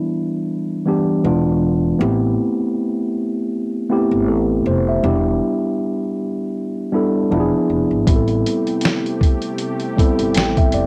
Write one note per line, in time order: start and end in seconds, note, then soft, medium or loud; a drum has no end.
0.00 0.86 E3 medium
0.00 0.86 G3 medium
0.00 0.10 B3 medium
0.00 0.11 D4 medium
0.00 0.11 E4 medium
0.86 1.22 E3 medium
0.86 1.24 G3 medium
0.86 1.24 B3 medium
0.86 1.25 D4 medium
0.86 1.25 G4 loud
1.24 1.92 E1 loud
1.24 1.86 E3 medium
1.24 1.87 G#3 medium
1.24 1.87 B3 medium
1.24 1.88 D4 medium
1.24 1.88 F4 medium
1.99 2.34 A1 loud
1.99 3.13 A3 medium
1.99 3.13 B3 medium
1.99 3.13 C4 medium
1.99 3.14 E4 medium
1.99 3.14 G4 medium
3.89 4.76 A3 medium
3.89 4.76 B3 medium
3.89 4.76 C4 medium
3.89 4.77 E4 medium
3.89 4.77 G4 loud
4.11 4.29 G1 loud
4.28 4.62 A1 loud
4.28 4.64 A4 medium
4.66 4.99 F1 medium
4.66 4.87 C5 medium
4.89 5.24 E5 medium
5.03 5.37 E1 loud
5.03 6.17 G3 medium
5.03 6.17 B3 medium
5.03 6.17 D4 medium
5.03 6.17 E4 medium
5.03 6.18 G4 medium
6.92 7.31 G3 medium
6.92 7.30 B3 medium
6.92 7.31 D4 medium
6.92 7.32 E4 medium
6.92 7.33 A4 medium
7.30 7.50 E1 medium
7.30 7.94 F3 medium
7.30 7.94 B3 medium
7.30 7.94 D4 medium
7.30 7.95 E4 medium
7.30 7.40 F4 medium
7.40 7.98 G#4 loud
7.70 7.89 F1 medium
7.91 8.06 G#1 medium
8.06 8.41 A1 loud
8.06 10.87 C3 medium
8.06 9.20 G3 medium
8.06 10.87 A3 medium
8.06 9.21 B3 medium
8.06 9.21 C4 medium
8.06 9.21 E4 medium
8.06 10.87 G4 medium
8.06 8.16 G4 medium
8.06 kick loud
8.06 closed hi-hat medium
8.16 9.25 A4 medium
8.28 closed hi-hat soft
8.46 closed hi-hat medium
8.67 closed hi-hat soft
8.81 snare loud
8.81 closed hi-hat medium
9.06 closed hi-hat soft
9.21 kick medium
9.21 closed hi-hat medium
9.42 closed hi-hat soft
9.58 closed hi-hat medium
9.80 closed hi-hat soft
9.96 10.83 G3 medium
9.96 10.83 B3 medium
9.96 10.84 C4 medium
9.96 10.84 E4 medium
9.96 10.85 A4 loud
9.96 kick medium
9.96 closed hi-hat medium
10.19 10.34 G1 medium
10.19 closed hi-hat soft
10.34 10.69 A1 medium
10.34 10.56 G5 medium
10.34 snare loud
10.34 closed hi-hat medium
10.57 10.73 E5 medium
10.57 kick medium
10.57 closed hi-hat soft
10.72 10.87 F1 medium
10.72 10.87 D5 medium
10.72 closed hi-hat medium